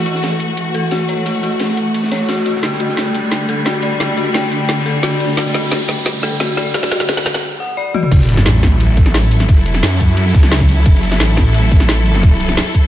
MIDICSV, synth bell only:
0, 0, Header, 1, 2, 480
1, 0, Start_track
1, 0, Tempo, 342857
1, 1761, Time_signature, 4, 2, 24, 8
1, 18018, End_track
2, 0, Start_track
2, 0, Title_t, "Synth bell"
2, 0, Program_c, 0, 98
2, 82, Note_on_c, 0, 66, 79
2, 142, Note_off_c, 0, 66, 0
2, 1042, Note_on_c, 0, 69, 75
2, 1142, Note_off_c, 0, 69, 0
2, 1282, Note_on_c, 0, 66, 76
2, 1382, Note_off_c, 0, 66, 0
2, 1522, Note_on_c, 0, 73, 80
2, 1672, Note_off_c, 0, 73, 0
2, 1762, Note_on_c, 0, 66, 80
2, 1862, Note_off_c, 0, 66, 0
2, 2002, Note_on_c, 0, 66, 76
2, 2062, Note_off_c, 0, 66, 0
2, 2961, Note_on_c, 0, 73, 76
2, 3112, Note_off_c, 0, 73, 0
2, 3202, Note_on_c, 0, 66, 76
2, 3302, Note_off_c, 0, 66, 0
2, 3442, Note_on_c, 0, 66, 76
2, 3542, Note_off_c, 0, 66, 0
2, 3681, Note_on_c, 0, 66, 80
2, 3782, Note_off_c, 0, 66, 0
2, 3921, Note_on_c, 0, 66, 74
2, 4022, Note_off_c, 0, 66, 0
2, 4882, Note_on_c, 0, 69, 74
2, 4982, Note_off_c, 0, 69, 0
2, 5121, Note_on_c, 0, 66, 77
2, 5222, Note_off_c, 0, 66, 0
2, 5361, Note_on_c, 0, 74, 80
2, 5512, Note_off_c, 0, 74, 0
2, 5602, Note_on_c, 0, 66, 82
2, 5702, Note_off_c, 0, 66, 0
2, 5842, Note_on_c, 0, 66, 77
2, 5942, Note_off_c, 0, 66, 0
2, 6801, Note_on_c, 0, 69, 78
2, 6902, Note_off_c, 0, 69, 0
2, 7042, Note_on_c, 0, 66, 77
2, 7142, Note_off_c, 0, 66, 0
2, 7282, Note_on_c, 0, 74, 77
2, 7432, Note_off_c, 0, 74, 0
2, 7522, Note_on_c, 0, 66, 85
2, 7622, Note_off_c, 0, 66, 0
2, 7762, Note_on_c, 0, 66, 78
2, 7862, Note_off_c, 0, 66, 0
2, 8722, Note_on_c, 0, 69, 78
2, 8822, Note_off_c, 0, 69, 0
2, 8962, Note_on_c, 0, 66, 77
2, 9062, Note_off_c, 0, 66, 0
2, 9202, Note_on_c, 0, 74, 80
2, 9352, Note_off_c, 0, 74, 0
2, 9442, Note_on_c, 0, 66, 83
2, 9542, Note_off_c, 0, 66, 0
2, 9682, Note_on_c, 0, 66, 79
2, 9782, Note_off_c, 0, 66, 0
2, 10642, Note_on_c, 0, 78, 78
2, 10792, Note_off_c, 0, 78, 0
2, 10881, Note_on_c, 0, 74, 105
2, 11032, Note_off_c, 0, 74, 0
2, 11122, Note_on_c, 0, 66, 107
2, 11222, Note_off_c, 0, 66, 0
2, 18018, End_track
0, 0, End_of_file